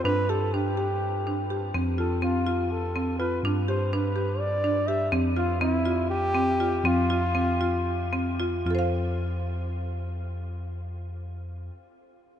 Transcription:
X:1
M:7/8
L:1/8
Q:1/4=123
K:Flyd
V:1 name="Flugelhorn"
B A G4 z | z A F2 A2 B | z c B2 d2 e | z F E2 G3 |
F4- F z2 | z6 z | z6 z |]
V:2 name="Marimba"
D G D G2 D G | C F C F2 C F | D G D G2 D G | C F C F2 C F |
C F C F2 C F | [FAcf]6- [FAcf]- | [FAcf]6- [FAcf] |]
V:3 name="Tine electric piano" clef=bass
G,,6- G,, | F,,6- F,, | G,,6- G,, | F,,6- F,, |
F,,6- F,, | F,,6- F,,- | F,,6- F,, |]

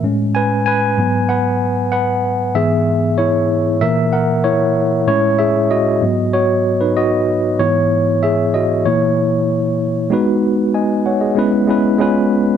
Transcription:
X:1
M:4/4
L:1/16
Q:1/4=95
K:C#m
V:1 name="Tine electric piano"
z2 [Bg]2 [Bg]4 [Bf]4 [Bf]4 | [Ge]4 [Ec]4 [^Ae]2 [Af]2 [Ec]4 | [Ec]2 [Ge]2 [Fd]4 [Fc]3 [DB] [Fd]4 | [Ec]4 [Ge]2 [Fd]2 [Ec]6 z2 |
z4 [dg]2 [cf] [Gd]2 z6 z |]
V:2 name="Tine electric piano"
[A,,G,C]6 [G,,F,B,]8- [G,,F,B,]2 | [G,,E,B,]6 z2 [^A,,E,^A,]8 | [A,,G,C]6 [G,,F,B,]2 z8 | [G,,E,B,]8 [^A,,E,^A,]8 |
[G,B,DFB]6 z2 [G,B,CEB]2 [G,B,CEB]2 [G,B,C^EB]4 |]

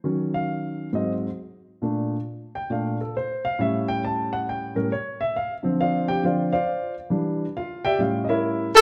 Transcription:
X:1
M:4/4
L:1/8
Q:"Swing" 1/4=136
K:Dm
V:1 name="Saxophone section"
z8 | z8 | z8 | z8 |
z6 z A |]
V:2 name="Grand piano"
z f3 ^d z3 | z3 g f A c f | e g a ^f g B ^c e | f z [Fcdf] [Gg] [Fcdf] [Fcdf]2 z |
z2 [Ff] [Gdeg] [Ff] [EB^c_e=e]2 z |]
V:3 name="Grand piano" clef=bass
[_E,_G,_D]4 [^G,,^F,^B,] z3 | [B,,A,D] z3 [B,,A,D] z3 | [A,,G,^C]4- [A,,G,C] [A,,G,C] z2 | z [D,F,C]3 [D,F,C] z3 |
[E,G,D] z3 [A,,G,^C]3 z |]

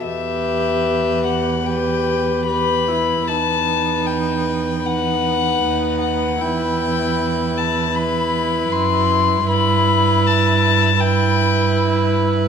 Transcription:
X:1
M:4/4
L:1/8
Q:1/4=77
K:Em
V:1 name="Violin"
e3 f g2 b2 | a2 g2 f3 f | g3 a b2 c'2 | b2 a2 g3 z |]
V:2 name="Violin"
B4 B2 B2 | B4 B4 | B4 B4 | B4 B4 |]
V:3 name="Viola"
G4 G2 G E | ^D4 D4 | E4 E4 | E4 E4 |]
V:4 name="Cello" clef=bass
E,,8 | E,,6 ^D,,2 | E,,6 F,,2 | G,,8 |]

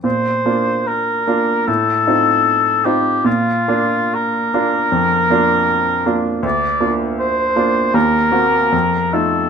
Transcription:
X:1
M:4/4
L:1/8
Q:1/4=76
K:Bb
V:1 name="Oboe"
c2 B2 A3 G | F2 B6 | d z c2 B3 A |]
V:2 name="Grand piano"
B,, [B,DF]2 [B,DF] A,, [CEF]2 [CEF] | B,, [B,DF]2 [B,DF] F,, [B,DF]2 [B,DF] | D,, [B,DF]2 [B,DF] E,, [B,C_G] F,, [A,EF] |]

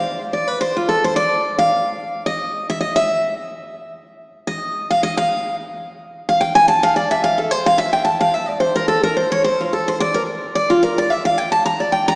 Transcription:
X:1
M:4/4
L:1/8
Q:"Swing" 1/4=217
K:F
V:1 name="Steel-string acoustic guitar"
f z d =B c F A c | d3 f4- f | _e3 =e _e =e3 | z8 |
_e3 f e f3 | z4 z f g _a | a f d e f A c f | e g a f e d c B |
A B c _d c F A c | d B z2 d F B d | e f g a b d g b |]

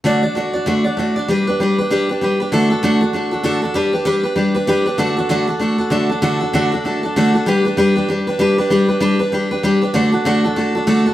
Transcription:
X:1
M:4/4
L:1/8
Q:"Swing" 1/4=194
K:D
V:1 name="Steel-string acoustic guitar"
[D,A,DFd] [DFd] [A,DFd] [DFd] [D,A,DFd] [DFd] [A,DFd] [DFd] | [G,DGB] [DGB] [G,DGB] [DGB] [G,DGB] [DGB] [G,DGB] [DGB] | [D,A,DFA] [DFA] [D,A,DFA] [DFA] [A,DFA] [DFA] [D,A,DFA] [DFA] | [G,DGB] [DGB] [G,DGB] [DGB] [G,DGB] [DGB] [G,DGB] [DGB] |
[D,A,DFA] [DFA] [D,A,DFA] [DFA] [A,DFA] [DFA] [D,A,DFA] [DFA] | [D,A,DFA] [DFA] [D,A,DFA] [DFA] [A,DFA] [DFA] [D,A,DFA] [DFA] | [G,DGB] [DGB] [G,DGB] [DGB] [G,DGB] [DGB] [G,DGB] [DGB] | [G,DGB] [DGB] [G,DGB] [DGB] [G,DGB] [DGB] [G,DGB] [DGB] |
[D,A,DFA] [DFA] [D,A,DFA] [DFA] [A,DFA] [DFA] [D,A,DFA] [DFA] |]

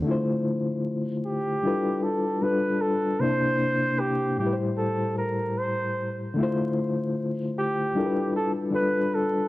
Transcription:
X:1
M:4/4
L:1/16
Q:"Swing 16ths" 1/4=76
K:Dm
V:1 name="Flugelhorn"
z6 G4 A2 =B2 A2 | c4 G2 G2 A2 B2 c3 z | z6 G4 A2 =B2 A2 |]
V:2 name="Reed electric piano"
[D,A,EFc]8 [G,DEFA=B]4 [G,DFAB]4 | [C,B,DEc]6 [A,,G,EG=Bc]8- [A,,G,EGBc]2 | [D,A,EFc]8 [G,DEFAB=B]4 [G,DFAB]4 |]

